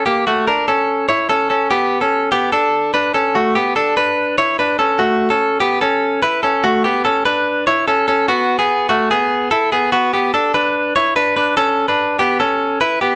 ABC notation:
X:1
M:4/4
L:1/16
Q:1/4=146
K:Amix
V:1 name="Clean electric guitar"
[_B,G]2 [A,F]2 [D_B]2 [CA]4 [Ec]2 [CA]2 [CA]2 | [B,G]3 [CA]3 [B,G]2 [DA]4 [DB]2 [CA]2 | [A,F]2 [B,G]2 [DA]2 [DB]4 [Ec]2 [DB]2 [CA]2 | [A,F]3 [CA]3 [B,G]2 [CA]4 [EB]2 [CA]2 |
[A,F]2 [B,G]2 [CA]2 [DB]4 [Ec]2 [CA]2 [CA]2 | [B,F]3 [B,^G]3 [A,F]2 [B,G]4 [EA]2 [B,G]2 | [B,F]2 [B,G]2 [DA]2 [DB]4 [Ec]2 [DB]2 [DB]2 | [CA]3 [DB]3 [B,G]2 [CA]4 [EB]2 [B,G]2 |]